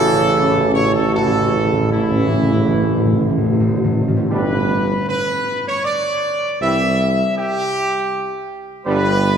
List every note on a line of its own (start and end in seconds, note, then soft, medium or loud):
0.00 3.93 A1 medium
0.00 1.09 C#3 loud
0.00 1.09 E3 loud
0.00 0.33 E4 medium
0.00 0.70 A4 loud
0.06 0.12 A2 soft
0.13 0.19 A2 soft
0.20 0.27 A2 soft
0.28 0.34 A2 soft
0.35 0.42 A2 soft
0.35 0.96 C#4 medium
0.43 0.50 A2 medium
0.51 0.56 A2 soft
0.58 0.64 A2 soft
0.65 0.71 A2 soft
0.72 0.79 A2 medium
0.72 0.92 C#5 loud
0.80 0.86 A2 medium
0.87 0.94 A2 medium
0.95 1.01 A2 medium
0.95 1.13 A4 loud
1.02 1.09 A2 medium
1.10 1.17 A2 medium
1.10 1.88 C#3 medium
1.10 1.88 E3 medium
1.10 1.49 F#4 medium
1.10 1.88 A4 loud
1.18 1.25 A2 medium
1.26 1.33 A2 medium
1.34 1.40 A2 medium
1.41 1.48 A2 medium
1.50 1.55 A2 medium
1.50 1.92 E4 medium
1.56 1.64 A2 medium
1.65 1.72 A2 medium
1.73 1.80 A2 medium
1.81 1.87 A2 medium
1.88 1.95 A2 medium
1.88 3.93 E3 medium
1.88 3.46 E4 loud
1.92 2.03 A2 medium
1.92 3.94 C#3 medium
1.92 3.87 C#4 medium
2.04 2.10 A2 medium
2.11 2.18 A2 medium
2.19 2.26 A2 medium
2.27 2.33 A2 medium
2.34 2.42 A2 medium
2.43 2.50 A2 medium
2.51 2.58 A2 medium
2.59 2.65 A2 medium
2.67 2.73 A2 medium
2.74 2.81 A2 medium
2.82 2.88 A2 medium
2.89 2.96 A2 medium
2.97 3.04 A2 medium
3.05 3.12 A2 medium
3.13 3.19 A2 loud
3.20 3.28 A2 medium
3.29 3.36 A2 medium
3.38 3.44 A2 loud
3.45 3.52 A2 loud
3.53 3.59 A2 loud
3.60 3.67 A2 loud
3.68 3.75 A2 loud
3.76 3.83 A2 loud
3.84 3.91 A2 loud
3.92 4.00 A2 loud
4.01 4.07 A2 loud
4.08 4.16 A2 loud
4.17 4.24 A2 loud
4.30 4.95 G1 medium
4.30 4.59 B2 medium
4.30 4.59 G3 medium
4.30 4.59 D4 medium
4.30 4.59 G4 medium
4.30 5.04 B4 loud
5.08 5.62 B4 loud
5.67 5.84 C#5 loud
5.85 6.57 D5 loud
6.61 7.24 C2 medium
6.61 6.89 E3 medium
6.61 6.89 G3 medium
6.61 6.88 C4 medium
6.61 6.88 G4 medium
6.61 7.33 E5 loud
7.38 8.49 G4 loud
8.86 9.38 G1 loud
8.86 9.13 D3 medium
8.86 9.13 G3 medium
8.86 9.13 B3 loud
8.86 9.13 G4 medium
8.86 9.38 B4 loud